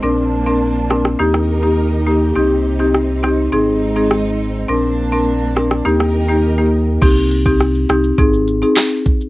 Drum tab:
CC |----------------|----------------|----------------|x---------------|
HH |----------------|----------------|----------------|--x---x---x---x-|
SH |----------------|----------------|----------------|xxxxxxxxxxxxxxxx|
CP |----------------|----------------|----------------|------------x---|
SD |------rr-r------|----r-r-----r---|------rr-r------|----r-r-----r---|
BD |----------------|----------------|----------------|o--o----o-----o-|